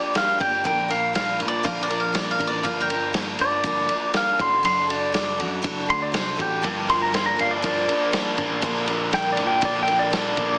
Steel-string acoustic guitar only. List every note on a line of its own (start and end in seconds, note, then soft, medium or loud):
0.00 0.13 F3 soft
0.00 0.14 A#3 soft
0.00 0.15 D4 soft
0.00 0.15 G4 soft
0.14 0.40 F3 medium
0.14 0.40 A#3 medium
0.14 0.38 D4 medium
0.14 0.37 G4 medium
0.38 0.64 F3 soft
0.38 0.64 A#3 soft
0.38 0.64 D4 soft
0.38 0.64 G4 soft
0.64 0.90 A#2 medium
0.64 0.90 D3 medium
0.64 0.90 F3 medium
0.64 0.90 A#3 medium
0.64 0.88 D4 medium
0.64 0.87 A#4 medium
0.88 1.12 F3 soft
0.88 1.13 A#3 soft
0.88 1.14 D4 soft
0.88 1.14 A#4 medium
1.13 1.39 F3 medium
1.13 1.39 A#3 medium
1.13 1.38 D4 medium
1.13 1.37 A#4 medium
1.38 1.63 F3 soft
1.38 1.63 A#3 soft
1.38 1.64 D4 soft
1.38 1.64 A#4 soft
1.63 1.89 A#2 medium
1.63 1.89 D3 medium
1.63 1.90 F3 medium
1.63 1.88 A#3 medium
1.63 1.87 D4 medium
1.63 1.86 A#4 loud
1.88 2.11 F3 soft
1.88 2.13 A#3 medium
1.88 2.13 D4 medium
1.88 2.14 A#4 medium
2.13 2.39 F3 medium
2.13 2.39 A#3 medium
2.13 2.38 D4 medium
2.13 2.37 A#4 medium
2.38 2.63 F3 medium
2.38 2.64 A#3 medium
2.38 2.64 D4 medium
2.38 2.64 A#4 medium
2.63 2.89 G2 medium
2.63 2.89 D3 medium
2.63 2.90 F3 medium
2.63 2.89 A#3 medium
2.63 2.88 D4 medium
2.63 2.87 A#4 medium
2.88 3.12 F3 soft
2.88 3.13 A#3 soft
2.88 3.14 D4 soft
2.88 3.14 A#4 medium
3.13 3.39 F3 medium
3.13 3.40 A#3 medium
3.13 3.39 D4 medium
3.13 3.38 A#4 medium
3.39 3.63 F3 soft
3.39 3.64 A#3 soft
3.39 3.65 D4 soft
3.39 3.64 A#4 soft
3.64 3.89 G2 medium
3.64 3.90 D3 loud
3.64 3.90 F3 loud
3.64 3.90 A#3 medium
3.64 3.89 D4 medium
3.64 3.88 A#4 loud
3.89 4.12 F3 soft
3.89 4.13 A#3 soft
3.89 4.14 D4 soft
3.89 4.14 A#4 soft
4.13 4.39 F3 medium
4.13 4.39 A#3 medium
4.13 4.39 D4 medium
4.13 4.37 A#4 medium
4.38 4.63 D4 soft
4.38 4.64 F#4 soft
4.38 4.64 A4 medium
4.63 4.89 F#3 medium
4.63 4.89 D4 medium
4.63 4.88 F#4 medium
4.63 4.86 A4 medium
4.87 5.12 D4 soft
4.87 5.13 F#4 soft
4.87 5.13 A4 soft
5.12 5.38 F#3 medium
5.12 5.39 D4 medium
5.12 5.38 F#4 medium
5.12 5.36 A4 medium
5.37 5.61 D4 soft
5.37 5.63 F#4 soft
5.37 5.63 A4 soft
5.62 5.88 F#3 medium
5.62 5.88 D4 loud
5.62 5.87 F#4 medium
5.62 5.85 A4 loud
5.86 6.12 D4 soft
5.86 6.13 F#4 soft
5.86 6.13 A4 medium
6.12 6.38 F#3 medium
6.12 6.39 D4 medium
6.12 6.38 F#4 medium
6.12 6.36 A4 medium
6.37 6.62 D4 soft
6.37 6.63 F#4 soft
6.37 6.63 A4 medium
6.62 6.88 G2 medium
6.62 6.88 D3 medium
6.62 6.88 F3 medium
6.62 6.87 A#3 medium
6.62 6.86 D4 medium
6.62 6.85 A#4 medium
6.86 7.09 F3 soft
6.86 7.11 A#3 soft
6.86 7.12 D4 medium
6.86 7.12 A#4 soft
7.11 7.37 F3 medium
7.11 7.38 A#3 medium
7.11 7.37 D4 medium
7.11 7.35 A#4 medium
7.36 7.62 F3 soft
7.36 7.62 A#3 soft
7.36 7.63 D4 soft
7.36 7.62 A#4 medium
7.62 7.88 G2 medium
7.62 7.88 D3 medium
7.62 7.88 F3 medium
7.62 7.88 A#3 loud
7.62 7.87 D4 medium
7.62 7.86 A#4 medium
7.87 8.11 F3 soft
7.87 8.12 A#3 soft
7.87 8.13 D4 soft
7.87 8.13 A#4 soft
8.12 8.38 F3 medium
8.12 8.38 A#3 medium
8.12 8.37 D4 medium
8.12 8.36 A#4 medium
8.37 8.62 F3 soft
8.37 8.62 A#3 medium
8.37 8.63 D4 medium
8.37 8.62 A#4 medium
8.62 8.87 A#2 medium
8.62 8.88 D3 medium
8.62 8.88 F3 medium
8.62 8.87 A#3 medium
8.62 8.86 D4 medium
8.62 8.85 A#4 medium
8.86 9.10 F3 soft
8.86 9.11 A#3 medium
8.86 9.12 D4 medium
8.86 9.12 A#4 medium
9.11 9.37 F3 medium
9.11 9.37 A#3 medium
9.11 9.37 D4 medium
9.11 9.36 A#4 medium
9.37 9.61 F3 soft
9.37 9.61 A#3 soft
9.37 9.62 D4 soft
9.37 9.62 A#4 soft
9.61 9.87 A#2 medium
9.61 9.87 D3 medium
9.61 9.87 F3 medium
9.61 9.87 A#3 medium
9.61 9.86 D4 medium
9.61 9.85 A#4 medium
9.86 10.09 F3 soft
9.86 10.10 A#3 soft
9.86 10.12 D4 medium
9.86 10.12 A#4 medium
10.10 10.36 F3 medium
10.10 10.37 A#3 medium
10.10 10.36 D4 medium
10.10 10.34 A#4 medium
10.35 10.58 F3 soft
10.35 10.58 A#3 medium
10.35 10.58 D4 medium
10.35 10.58 A#4 medium